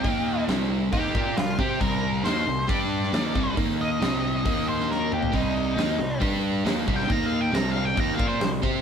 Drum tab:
HH |o---o---o---o---|o---o---o---o---|o---o---o-------|o---o---o---o---|
SD |----o-------o---|----o------oo---|----o------oo---|----o-------o--o|
T2 |----------------|----------------|--------------o-|----------------|
FT |----------------|----------------|---------------o|----------------|
BD |o-------o-o---o-|o-------o-----o-|o-------o-------|o-------o-----o-|

HH |o---o---o---o---|
SD |----o-------o---|
T2 |----------------|
FT |----------------|
BD |o-------o-o---o-|